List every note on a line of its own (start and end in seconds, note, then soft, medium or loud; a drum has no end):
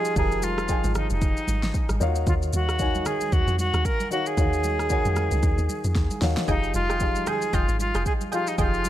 0.00 0.16 F3 medium
0.00 0.16 D#4 medium
0.00 0.17 G4 medium
0.00 0.15 G#4 loud
0.00 0.18 G#4 medium
0.00 2.03 D#5 loud
0.00 2.03 F5 loud
0.05 shaker medium
0.16 0.81 F1 loud
0.16 0.60 F3 medium
0.16 0.60 D#4 medium
0.16 0.61 G4 medium
0.16 0.45 G#4 loud
0.16 0.61 G#4 medium
0.16 0.61 A#4 medium
0.16 kick loud
0.16 low conga medium
0.16 shaker medium
0.32 shaker soft
0.43 0.96 F4 loud
0.43 high conga medium
0.43 shaker loud
0.58 cross-stick medium
0.58 shaker medium
0.68 1.54 F3 medium
0.68 1.54 D#4 medium
0.68 1.55 G#4 medium
0.68 1.54 G5 medium
0.68 1.55 G#5 medium
0.68 kick loud
0.68 shaker medium
0.84 1.09 G#1 loud
0.84 high conga medium
0.84 shaker medium
0.95 1.10 D#4 medium
0.95 cross-stick loud
0.95 high conga medium
0.95 low conga medium
0.95 shaker medium
1.10 1.35 F1 loud
1.10 1.97 D#4 medium
1.10 high conga medium
1.10 shaker medium
1.22 kick loud
1.22 low conga medium
1.22 shaker medium
1.37 shaker medium
1.47 1.72 G#1 medium
1.47 high conga medium
1.47 shaker medium
1.63 snare medium
1.63 shaker medium
1.74 kick loud
1.74 shaker medium
1.89 2.00 G#1 medium
1.89 cross-stick medium
1.89 high conga medium
1.89 shaker medium
2.00 2.25 D#2 loud
2.00 2.65 D#3 loud
2.00 2.66 D#4 medium
2.00 2.08 F4 medium
2.00 2.66 C#5 medium
2.00 2.67 F5 loud
2.00 shaker medium
2.08 2.69 F#4 medium
2.15 shaker medium
2.27 2.51 D#2 loud
2.27 2.34 F4 loud
2.27 kick loud
2.27 low conga medium
2.27 shaker medium
2.42 shaker soft
2.53 3.02 D#2 loud
2.53 3.08 F#4 loud
2.53 high conga medium
2.53 shaker loud
2.69 cross-stick medium
2.69 shaker medium
2.79 3.64 D#3 medium
2.79 3.65 D#4 medium
2.79 3.65 F#4 medium
2.79 3.65 C#5 medium
2.79 3.66 G#5 medium
2.79 kick loud
2.79 shaker medium
2.95 high conga medium
2.95 shaker medium
3.06 3.34 G#4 loud
3.06 cross-stick loud
3.06 high conga medium
3.06 low conga medium
3.06 shaker medium
3.21 high conga medium
3.21 shaker medium
3.32 3.47 D#2 medium
3.32 3.59 F#4 loud
3.32 kick loud
3.32 low conga medium
3.32 shaker medium
3.47 3.72 F2 loud
3.47 shaker medium
3.58 3.87 F#4 loud
3.58 high conga medium
3.58 shaker medium
3.74 3.84 D#2 medium
3.74 cross-stick medium
3.74 shaker medium
3.85 4.11 A#4 loud
3.85 kick loud
3.85 shaker medium
4.00 high conga medium
4.00 shaker medium
4.10 4.33 D#3 medium
4.10 4.33 D#4 medium
4.10 4.28 F#4 loud
4.10 4.33 F#4 medium
4.10 4.34 C#5 medium
4.10 4.34 F5 medium
4.10 shaker medium
4.26 6.22 G#4 loud
4.26 shaker medium
4.37 5.02 D#2 loud
4.37 4.81 D#3 medium
4.37 4.81 D#4 medium
4.37 4.82 F#4 medium
4.37 4.82 C#5 medium
4.37 4.82 F5 medium
4.37 kick loud
4.37 low conga medium
4.37 shaker medium
4.53 shaker soft
4.64 high conga medium
4.64 shaker loud
4.79 cross-stick medium
4.79 shaker medium
4.90 5.75 D#3 medium
4.90 5.75 D#4 medium
4.90 5.76 F#4 medium
4.90 5.76 C#5 medium
4.90 5.76 G#5 loud
4.90 kick medium
4.90 shaker medium
5.05 5.30 F2 loud
5.05 high conga medium
5.05 shaker medium
5.16 cross-stick medium
5.16 high conga medium
5.16 low conga medium
5.16 shaker medium
5.31 5.42 C#2 loud
5.31 high conga medium
5.31 shaker medium
5.43 5.57 D#2 loud
5.43 kick loud
5.43 low conga medium
5.43 shaker medium
5.58 5.68 D#2 loud
5.58 shaker medium
5.69 high conga medium
5.69 shaker medium
5.84 5.95 F2 medium
5.84 shaker medium
5.95 6.10 D#2 medium
5.95 kick loud
5.95 snare medium
5.95 shaker medium
6.11 high conga medium
6.11 shaker medium
6.21 6.36 D#2 loud
6.21 6.43 D#3 medium
6.21 6.44 D#4 medium
6.21 6.44 F#4 medium
6.21 6.44 C#5 medium
6.21 6.45 F5 medium
6.21 snare loud
6.21 open hi-hat medium
6.21 shaker medium
6.37 snare loud
6.37 shaker medium
6.47 6.72 F1 loud
6.47 6.91 F3 medium
6.47 6.92 D#4 medium
6.47 6.73 D#4 loud
6.47 6.92 G4 medium
6.47 6.86 G#4 loud
6.47 6.92 G#4 medium
6.47 6.86 D#5 medium
6.47 6.93 F5 medium
6.47 6.86 G5 loud
6.47 kick loud
6.47 low conga medium
6.47 shaker medium
6.64 shaker soft
6.74 7.23 F1 loud
6.74 7.29 F4 loud
6.74 high conga medium
6.74 shaker loud
6.89 7.01 G#4 medium
6.89 7.02 D#5 medium
6.89 7.02 G5 medium
6.89 cross-stick medium
6.89 shaker medium
7.00 7.85 F3 medium
7.00 7.86 D#4 medium
7.00 7.86 G4 medium
7.00 7.86 G#4 medium
7.00 7.87 F5 medium
7.00 kick medium
7.00 shaker medium
7.16 high conga medium
7.16 shaker medium
7.26 7.43 G#4 medium
7.26 7.56 G#4 loud
7.26 7.43 D#5 medium
7.26 7.43 G5 medium
7.26 cross-stick loud
7.26 high conga medium
7.26 low conga medium
7.26 shaker medium
7.42 high conga medium
7.42 shaker medium
7.53 7.67 F1 loud
7.53 7.80 F4 loud
7.53 7.69 G#4 loud
7.53 7.69 D#5 medium
7.53 7.69 G5 loud
7.53 kick loud
7.53 low conga medium
7.53 shaker medium
7.68 7.93 G#1 medium
7.68 shaker medium
7.79 8.05 F4 loud
7.79 high conga medium
7.79 shaker medium
7.94 8.05 F1 medium
7.94 8.29 G#4 medium
7.94 8.30 D#5 medium
7.94 8.30 G5 medium
7.94 cross-stick medium
7.94 shaker medium
8.06 8.13 G#4 loud
8.06 kick loud
8.06 shaker medium
8.21 high conga medium
8.21 shaker medium
8.31 8.54 F3 medium
8.31 8.54 D#4 medium
8.31 8.49 F4 loud
8.31 8.54 G4 medium
8.31 8.57 G#4 medium
8.31 8.55 G#4 medium
8.31 8.57 D#5 medium
8.31 8.55 F5 medium
8.31 8.57 G5 medium
8.31 shaker medium
8.47 8.59 D#4 medium
8.47 shaker medium
8.58 8.89 F1 loud
8.58 8.89 F3 medium
8.58 8.89 D#4 medium
8.58 8.89 F4 loud
8.58 8.89 G4 medium
8.58 8.89 G#4 medium
8.58 8.89 D#5 medium
8.58 8.89 F5 medium
8.58 8.89 G5 loud
8.58 kick loud
8.58 low conga medium
8.58 shaker medium
8.74 shaker soft
8.85 high conga medium
8.85 shaker loud